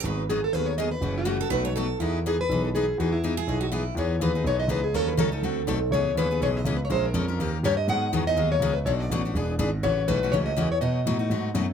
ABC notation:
X:1
M:4/4
L:1/16
Q:"Swing" 1/4=245
K:E
V:1 name="Steel-string acoustic guitar"
z4 G2 A2 B2 c2 d2 B2- | B2 F12 z2 | z4 G2 B4 A2 G4 | F2 E8 z6 |
c4 B4 c2 d2 B2 G2 | A2 B2 A8- A2 z2 | c4 B4 c2 d2- (3d2 B2 c2 | =c2 ^A8 z2 ^c2 d2 |
f6 d4 c4 B2 | c2 =d12 z2 | c4 B4 c2 d4 c2 | d12 z4 |]
V:2 name="Steel-string acoustic guitar"
B3 z12 z | z6 A2 B2 c2 A4 | E3 z12 z | z6 G4 F2 E4 |
z16 | z16 | z16 | z16 |
z16 | z16 | z16 | z16 |]
V:3 name="Steel-string acoustic guitar"
[D,F,B,DG]2 z2 [D,F,B,DG]2 z2 [D,F,B,DG]2 z2 [D,F,B,DG]2 z2 | [C,E,A,CF]2 z2 [C,E,A,CF]2 z2 [B,,F,A,DF]2 z2 [B,,F,A,DF]2 z2 | [E,B,DG]2 z2 [E,B,DG]2 z2 [E,B,DG]2 z2 [E,B,DG]2 z2 | [E,B,DG]2 z2 [E,B,DG]2 z2 [E,B,DG]2 z2 [E,B,DG]2 z2 |
[E,B,DG]2 z2 [E,B,DG]2 [B,DG]2 [E,B,DG]2 z2 [E,B,DG]2 z2 | [D,F,CDA]2 z2 [D,F,CDA]2 [CDA]2 [=D,A,=CFA]2 z2 [D,A,CFA]2 z2 | [C,E,B,CG]2 z2 [C,E,B,CG]2 [B,CG]2 [C,E,B,CG]2 z2 [C,E,B,CG]2 z2 | [^E,G,C^E^A]2 z2 [E,G,CEA]2 [CEA]2 [D,^A,C=GA]2 z2 [D,A,CGA]2 z2 |
[D,F,B,DG]2 z2 [D,F,B,DG]2 [B,DG]2 [D,F,B,DG]2 z2 [D,F,B,DG]2 z2 | [B,,F,A,=DF]2 z2 [B,,F,A,DF]2 [A,DF]2 [E,B,DG]2 z2 [E,B,DG]2 z2 | [C,E,A,CF]2 z2 [C,E,A,CF]2 [A,CF]2 [C,E,A,CF]2 z2 [C,E,A,CF]2 z2 | [B,,F,A,DF]2 z2 [B,,F,A,DF]2 [A,DF]2 [B,,F,A,DF]2 z2 [B,,F,A,DF]2 z2 |]
V:4 name="Grand piano" clef=bass
G,,,8 D,,8 | F,,,8 B,,,8 | E,,8 B,,,8 | E,,8 B,,,8 |
E,,4 D,,4 B,,,4 C,,4 | D,,4 C,,4 =D,,4 B,,,4 | C,,2 C,,2 D,,4 B,,,4 C,,4 | ^A,,,4 ^E,,4 D,,4 =G,,4 |
G,,4 E,,4 D,,4 C,,4 | B,,,4 A,,,4 E,,,4 G,,,4 | A,,,4 B,,,4 C,,4 E,,4 | B,,4 A,,4 G,,4 F,,4 |]